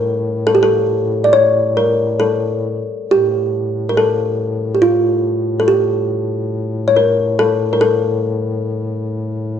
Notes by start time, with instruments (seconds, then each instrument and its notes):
Already playing: duduk A2, kalimba A#4
0.47 kalimba A4
0.55 kalimba G4
0.63 kalimba A4
1.24 kalimba D5
1.33 kalimba C#5
1.77 kalimba A#4
2.20 kalimba A4
3.10 duduk A2, kalimba G4
3.89 kalimba A#4
3.97 kalimba A4
4.75 kalimba G4
4.82 kalimba F4
5.60 kalimba A4
5.68 kalimba G4
6.88 kalimba C#5
6.96 kalimba A#4
7.39 kalimba A4
7.73 kalimba A#4
7.81 kalimba A4